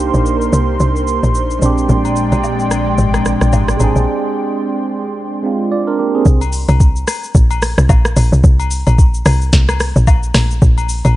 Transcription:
Already playing: log drum bass C2, tine electric piano A#3 D4 D#4 G4, analog synth pad A#4 C5 C6
0.14 log drum bass A#1, shaker
0.26 shaker
0.41 shaker
0.53 log drum bass C2, shaker
0.80 log drum bass C2, shaker
0.96 shaker
1.07 shaker
1.23 log drum bass A#1, shaker
1.35 shaker
1.51 shaker
1.59 log drum bass A#1, tine electric piano G#3 C4, analog synth pad G#3 D5 G5, shaker
1.63 tine electric piano D4 G4
1.78 shaker
1.89 analog synth bass A#1, log drum bass A#1, shaker
2.05 high agogo, shaker
2.16 shaker
2.32 log drum bass A#1, high agogo, shaker
2.44 low woodblock, shaker
2.60 shaker
2.71 cross-stick, high agogo, shaker
2.98 log drum bass G#1, shaker
3.14 cross-stick, high agogo, shaker
3.25 cross-stick, shaker
3.41 log drum bass A#1, cross-stick, shaker
3.53 log drum bass G#1, high agogo, low woodblock, shaker
3.68 cross-stick, shaker
3.77 log drum bass G#1, tine electric piano G#3 C4, high agogo, shaker
3.82 tine electric piano D4 G#4
3.96 log drum bass A#1, shaker
5.43 tine electric piano G#3 C4 D4 F4
5.72 tine electric piano F4 D5
5.87 tine electric piano D4 A#4
5.99 tine electric piano A#3 G4
6.15 tine electric piano C4 G#4
6.26 log drum bass C2, kick, shaker
6.41 high agogo, shaker
6.53 open hi-hat, shaker
6.69 log drum bass C2, high agogo, shaker
6.80 kick, shaker
6.96 shaker
7.07 cross-stick, open hi-hat, high agogo, shaker
7.23 shaker
7.35 log drum bass A#1, kick, shaker
7.51 high agogo, shaker
7.62 cross-stick, open hi-hat, shaker
7.78 log drum bass C2, cross-stick, shaker
7.89 log drum bass A#1, kick, high agogo, low woodblock, shaker
8.05 cross-stick, shaker
8.16 log drum bass A#1, open hi-hat, high agogo, shaker
8.32 log drum bass C2, shaker
8.44 log drum bass C2, kick, shaker
8.60 high agogo, shaker
8.71 open hi-hat, shaker
8.87 log drum bass A#1, high agogo, shaker
8.98 kick, shaker
9.14 shaker
9.26 log drum bass C2, cross-stick, open hi-hat, high agogo, shaker
9.42 shaker
9.53 log drum bass C2, kick, snare, shaker
9.69 cross-stick, high agogo, shaker
9.80 cross-stick, open hi-hat, shaker
9.96 log drum bass A#1, shaker
10.07 kick, high agogo, low woodblock, shaker
10.23 shaker
10.34 log drum bass A#1, cross-stick, snare, open hi-hat, high agogo, shaker
10.51 shaker
10.62 log drum bass A#1, kick, shaker
10.78 high agogo, shaker
10.89 open hi-hat, shaker
11.05 log drum bass A#1, high agogo, shaker

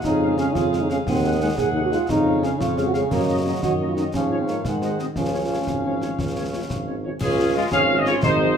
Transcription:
0.04 tuba F2, trombone section C#3, euphonium D#4, woodwind section G#4 F5, concert bass drum, snare
0.22 french horn section G#3 C#4 G#4, trumpet section F5
0.38 french horn section G#3 C#4 G#4, euphonium C#4, trumpet section F5, snare
0.55 tuba F2, euphonium F4, woodwind section G#4 F5, concert bass drum, snare
0.72 french horn section G#3 C#4 G#4, trumpet section F5, snare
0.81 euphonium D#4
0.90 french horn section G#3 C#4 G#4, euphonium C#4, trumpet section F5, snare
1.06 tuba D#2, trombone section D#3, euphonium C4, woodwind section G#4 F#5, concert bass drum, snare
1.24 french horn section G#3 D#4 G#4, trumpet section F#5
1.41 euphonium G#3, french horn section G#3 D#4 G#4, trumpet section F#5
1.58 tuba D#2, trombone section C3, euphonium G#4, woodwind section G#4 F#5, concert bass drum, snare
1.74 french horn section G#3 D#4 G#4, trumpet section F#5
1.84 euphonium F#4
1.91 french horn section G#3 D#4 G#4, euphonium F4, trumpet section F#5, snare
2.08 tuba F2, trombone section C#3, euphonium D#4, woodwind section C#5 F5, concert bass drum, snare
2.25 french horn section G#3 C#4 G#4, trumpet section F5
2.43 french horn section G#3 C#4 G#4, euphonium C#4, trumpet section F5, snare
2.60 tuba F2, euphonium F4, woodwind section C#5 F5, concert bass drum, snare
2.77 french horn section G#3 C#4 G#4, trumpet section F5, snare
2.86 euphonium F#4
2.93 french horn section G#3 C#4 G#4, euphonium G#4, trumpet section F5, snare
3.11 tuba F#2, euphonium A#3, woodwind section C#5 D#5, concert bass drum, snare, crash
3.28 french horn section A#3 C#4 F#4, trumpet section D#5
3.46 euphonium F#3, french horn section A#3 C#4 F#4, trumpet section D#5
3.63 tuba F#2, trombone section D#3, euphonium F#4, woodwind section C#5 D#5, concert bass drum, snare
3.80 french horn section A#3 C#4 F#4, trumpet section D#5
3.89 euphonium F4
3.96 french horn section A#3 C#4 F#4, euphonium D#4, trumpet section D#5, snare
4.13 tuba G#2, trombone section F3, euphonium C#4, woodwind section C#5 F5, concert bass drum, snare
4.30 french horn section G#3 C#4 F4, trumpet section C#5
4.40 euphonium C4
4.48 french horn section G#3 C#4 F4, euphonium A#3, trumpet section C#5, snare
4.64 tuba G#2, trombone section D#3, euphonium G#3, woodwind section C5 F#5, concert bass drum, snare
4.82 french horn section G#3 C4 F#4, trumpet section D#5, snare
4.99 french horn section G#3 C4 F#4, euphonium C4, trumpet section D#5, snare
5.16 tuba C#2, trombone section F3, euphonium C#4, woodwind section C#5 F5, concert bass drum, snare
5.34 french horn section G#3 C#4 F4, trumpet section C#5
5.50 french horn section G#3 C#4 F4, trumpet section C#5
5.67 tuba G#1, concert bass drum, snare
5.84 french horn section G#3 C#4 F4, trumpet section C#5
6.02 french horn section G#3 C#4 F4, trumpet section C#5, snare
6.19 tuba C#2, concert bass drum, snare
6.36 french horn section G#3 C#4 F4, trumpet section C#5
6.53 french horn section G#3 C#4 F4, trumpet section C#5
6.70 tuba G#1, concert bass drum, snare
6.87 french horn section G#3 C#4 F4, trumpet section C#5
7.04 french horn section G#3 C#4 F4, trumpet section C#5
7.20 tuba C#2, woodwind section C#4, trombone section F4, trumpet section G#4, concert bass drum, snare, crash
7.38 french horn section G#3 F4
7.55 french horn section G#3 F4, woodwind section G#3, trumpet section F4
7.71 tuba G#1, trombone section C#4, woodwind section G#4, trumpet section F5, concert bass drum, snare
7.89 french horn section G#3 F4
7.96 woodwind section F#4, trumpet section D#5
8.05 french horn section G#3 F4, woodwind section F4, trumpet section C#5, snare
8.23 tuba G#1, woodwind section D#4, trombone section D#4, trumpet section C5, concert bass drum, snare
8.40 french horn section F#3 G#3 D#4

